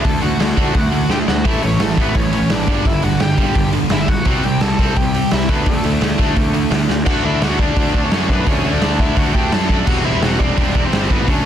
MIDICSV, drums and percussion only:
0, 0, Header, 1, 2, 480
1, 0, Start_track
1, 0, Tempo, 350877
1, 73, Time_signature, 4, 2, 24, 8
1, 15670, End_track
2, 0, Start_track
2, 0, Title_t, "Drums"
2, 64, Note_on_c, 9, 36, 105
2, 66, Note_on_c, 9, 46, 78
2, 201, Note_off_c, 9, 36, 0
2, 203, Note_off_c, 9, 46, 0
2, 306, Note_on_c, 9, 46, 58
2, 443, Note_off_c, 9, 46, 0
2, 547, Note_on_c, 9, 46, 67
2, 554, Note_on_c, 9, 38, 99
2, 684, Note_off_c, 9, 46, 0
2, 691, Note_off_c, 9, 38, 0
2, 785, Note_on_c, 9, 36, 71
2, 789, Note_on_c, 9, 46, 52
2, 922, Note_off_c, 9, 36, 0
2, 925, Note_off_c, 9, 46, 0
2, 1021, Note_on_c, 9, 46, 74
2, 1024, Note_on_c, 9, 36, 98
2, 1157, Note_off_c, 9, 46, 0
2, 1160, Note_off_c, 9, 36, 0
2, 1262, Note_on_c, 9, 46, 57
2, 1398, Note_off_c, 9, 46, 0
2, 1503, Note_on_c, 9, 38, 55
2, 1639, Note_off_c, 9, 38, 0
2, 1753, Note_on_c, 9, 38, 78
2, 1889, Note_off_c, 9, 38, 0
2, 1985, Note_on_c, 9, 46, 74
2, 1986, Note_on_c, 9, 36, 113
2, 2122, Note_off_c, 9, 46, 0
2, 2123, Note_off_c, 9, 36, 0
2, 2228, Note_on_c, 9, 46, 61
2, 2365, Note_off_c, 9, 46, 0
2, 2458, Note_on_c, 9, 46, 75
2, 2465, Note_on_c, 9, 38, 111
2, 2595, Note_off_c, 9, 46, 0
2, 2602, Note_off_c, 9, 38, 0
2, 2697, Note_on_c, 9, 46, 53
2, 2702, Note_on_c, 9, 36, 86
2, 2834, Note_off_c, 9, 46, 0
2, 2839, Note_off_c, 9, 36, 0
2, 2936, Note_on_c, 9, 46, 75
2, 2943, Note_on_c, 9, 36, 97
2, 3073, Note_off_c, 9, 46, 0
2, 3080, Note_off_c, 9, 36, 0
2, 3184, Note_on_c, 9, 46, 68
2, 3321, Note_off_c, 9, 46, 0
2, 3417, Note_on_c, 9, 46, 81
2, 3423, Note_on_c, 9, 38, 105
2, 3553, Note_off_c, 9, 46, 0
2, 3560, Note_off_c, 9, 38, 0
2, 3659, Note_on_c, 9, 46, 55
2, 3663, Note_on_c, 9, 36, 76
2, 3796, Note_off_c, 9, 46, 0
2, 3799, Note_off_c, 9, 36, 0
2, 3904, Note_on_c, 9, 36, 102
2, 3908, Note_on_c, 9, 46, 71
2, 4041, Note_off_c, 9, 36, 0
2, 4045, Note_off_c, 9, 46, 0
2, 4138, Note_on_c, 9, 46, 63
2, 4274, Note_off_c, 9, 46, 0
2, 4377, Note_on_c, 9, 46, 70
2, 4384, Note_on_c, 9, 38, 100
2, 4514, Note_off_c, 9, 46, 0
2, 4521, Note_off_c, 9, 38, 0
2, 4621, Note_on_c, 9, 46, 54
2, 4622, Note_on_c, 9, 36, 77
2, 4758, Note_off_c, 9, 46, 0
2, 4759, Note_off_c, 9, 36, 0
2, 4860, Note_on_c, 9, 46, 69
2, 4862, Note_on_c, 9, 36, 103
2, 4996, Note_off_c, 9, 46, 0
2, 4998, Note_off_c, 9, 36, 0
2, 5097, Note_on_c, 9, 46, 61
2, 5233, Note_off_c, 9, 46, 0
2, 5331, Note_on_c, 9, 46, 70
2, 5338, Note_on_c, 9, 38, 103
2, 5468, Note_off_c, 9, 46, 0
2, 5475, Note_off_c, 9, 38, 0
2, 5583, Note_on_c, 9, 36, 77
2, 5583, Note_on_c, 9, 46, 57
2, 5719, Note_off_c, 9, 46, 0
2, 5720, Note_off_c, 9, 36, 0
2, 5815, Note_on_c, 9, 46, 74
2, 5825, Note_on_c, 9, 36, 102
2, 5952, Note_off_c, 9, 46, 0
2, 5961, Note_off_c, 9, 36, 0
2, 6066, Note_on_c, 9, 46, 58
2, 6202, Note_off_c, 9, 46, 0
2, 6303, Note_on_c, 9, 46, 67
2, 6310, Note_on_c, 9, 38, 102
2, 6440, Note_off_c, 9, 46, 0
2, 6446, Note_off_c, 9, 38, 0
2, 6551, Note_on_c, 9, 36, 82
2, 6553, Note_on_c, 9, 46, 64
2, 6688, Note_off_c, 9, 36, 0
2, 6690, Note_off_c, 9, 46, 0
2, 6793, Note_on_c, 9, 36, 98
2, 6793, Note_on_c, 9, 46, 77
2, 6930, Note_off_c, 9, 36, 0
2, 6930, Note_off_c, 9, 46, 0
2, 7035, Note_on_c, 9, 46, 68
2, 7172, Note_off_c, 9, 46, 0
2, 7266, Note_on_c, 9, 46, 68
2, 7273, Note_on_c, 9, 38, 98
2, 7403, Note_off_c, 9, 46, 0
2, 7410, Note_off_c, 9, 38, 0
2, 7505, Note_on_c, 9, 46, 53
2, 7510, Note_on_c, 9, 36, 86
2, 7641, Note_off_c, 9, 46, 0
2, 7647, Note_off_c, 9, 36, 0
2, 7744, Note_on_c, 9, 46, 82
2, 7749, Note_on_c, 9, 36, 103
2, 7881, Note_off_c, 9, 46, 0
2, 7886, Note_off_c, 9, 36, 0
2, 7984, Note_on_c, 9, 46, 61
2, 8121, Note_off_c, 9, 46, 0
2, 8228, Note_on_c, 9, 46, 73
2, 8235, Note_on_c, 9, 38, 101
2, 8365, Note_off_c, 9, 46, 0
2, 8372, Note_off_c, 9, 38, 0
2, 8464, Note_on_c, 9, 46, 51
2, 8469, Note_on_c, 9, 36, 75
2, 8601, Note_off_c, 9, 46, 0
2, 8606, Note_off_c, 9, 36, 0
2, 8707, Note_on_c, 9, 46, 68
2, 8708, Note_on_c, 9, 36, 92
2, 8844, Note_off_c, 9, 46, 0
2, 8845, Note_off_c, 9, 36, 0
2, 8951, Note_on_c, 9, 46, 57
2, 9087, Note_off_c, 9, 46, 0
2, 9185, Note_on_c, 9, 46, 77
2, 9192, Note_on_c, 9, 38, 101
2, 9322, Note_off_c, 9, 46, 0
2, 9328, Note_off_c, 9, 38, 0
2, 9431, Note_on_c, 9, 38, 59
2, 9568, Note_off_c, 9, 38, 0
2, 9660, Note_on_c, 9, 49, 116
2, 9665, Note_on_c, 9, 36, 106
2, 9797, Note_off_c, 9, 49, 0
2, 9802, Note_off_c, 9, 36, 0
2, 10143, Note_on_c, 9, 46, 55
2, 10150, Note_on_c, 9, 38, 102
2, 10280, Note_off_c, 9, 46, 0
2, 10287, Note_off_c, 9, 38, 0
2, 10384, Note_on_c, 9, 36, 88
2, 10521, Note_off_c, 9, 36, 0
2, 10620, Note_on_c, 9, 46, 61
2, 10624, Note_on_c, 9, 36, 115
2, 10756, Note_off_c, 9, 46, 0
2, 10761, Note_off_c, 9, 36, 0
2, 10865, Note_on_c, 9, 36, 86
2, 11002, Note_off_c, 9, 36, 0
2, 11098, Note_on_c, 9, 46, 56
2, 11105, Note_on_c, 9, 38, 103
2, 11235, Note_off_c, 9, 46, 0
2, 11242, Note_off_c, 9, 38, 0
2, 11344, Note_on_c, 9, 36, 77
2, 11481, Note_off_c, 9, 36, 0
2, 11578, Note_on_c, 9, 46, 64
2, 11584, Note_on_c, 9, 36, 100
2, 11715, Note_off_c, 9, 46, 0
2, 11721, Note_off_c, 9, 36, 0
2, 12058, Note_on_c, 9, 46, 61
2, 12065, Note_on_c, 9, 38, 107
2, 12195, Note_off_c, 9, 46, 0
2, 12202, Note_off_c, 9, 38, 0
2, 12304, Note_on_c, 9, 36, 88
2, 12440, Note_off_c, 9, 36, 0
2, 12536, Note_on_c, 9, 46, 55
2, 12542, Note_on_c, 9, 36, 99
2, 12673, Note_off_c, 9, 46, 0
2, 12679, Note_off_c, 9, 36, 0
2, 12782, Note_on_c, 9, 36, 92
2, 12919, Note_off_c, 9, 36, 0
2, 13023, Note_on_c, 9, 46, 49
2, 13030, Note_on_c, 9, 38, 112
2, 13160, Note_off_c, 9, 46, 0
2, 13167, Note_off_c, 9, 38, 0
2, 13263, Note_on_c, 9, 36, 78
2, 13400, Note_off_c, 9, 36, 0
2, 13504, Note_on_c, 9, 36, 111
2, 13504, Note_on_c, 9, 57, 97
2, 13640, Note_off_c, 9, 57, 0
2, 13641, Note_off_c, 9, 36, 0
2, 13982, Note_on_c, 9, 46, 55
2, 13989, Note_on_c, 9, 38, 101
2, 14119, Note_off_c, 9, 46, 0
2, 14126, Note_off_c, 9, 38, 0
2, 14227, Note_on_c, 9, 36, 82
2, 14363, Note_off_c, 9, 36, 0
2, 14469, Note_on_c, 9, 36, 106
2, 14470, Note_on_c, 9, 46, 63
2, 14605, Note_off_c, 9, 36, 0
2, 14607, Note_off_c, 9, 46, 0
2, 14708, Note_on_c, 9, 36, 101
2, 14845, Note_off_c, 9, 36, 0
2, 14948, Note_on_c, 9, 46, 57
2, 14954, Note_on_c, 9, 38, 111
2, 15084, Note_off_c, 9, 46, 0
2, 15091, Note_off_c, 9, 38, 0
2, 15191, Note_on_c, 9, 36, 89
2, 15328, Note_off_c, 9, 36, 0
2, 15429, Note_on_c, 9, 36, 112
2, 15429, Note_on_c, 9, 46, 61
2, 15566, Note_off_c, 9, 36, 0
2, 15566, Note_off_c, 9, 46, 0
2, 15670, End_track
0, 0, End_of_file